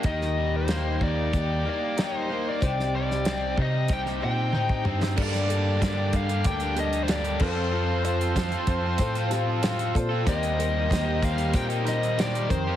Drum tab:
CC |----------------|----------------|x-------------x-|----------------|
HH |x---x---x---x---|x---x---x-------|-xx-x-xxxxxxxx--|--xxxxx-xxx-xxx-|
SD |-o--o-------o---|-o-oo----o-----o|-o--o-------o---|----o-----o-o---|
T1 |----------------|------------o---|----------------|----------------|
T2 |----------------|--------------o-|----------------|----------------|
BD |o-----o-o-------|o-----o-o----o--|o---o-o-o-----o-|----o-o-o-----o-|

CC |----------------|
HH |xxx-x-xxxxxxxxx-|
SD |----o-----o-o---|
T1 |----------------|
T2 |----------------|
BD |o---o-o-o-----o-|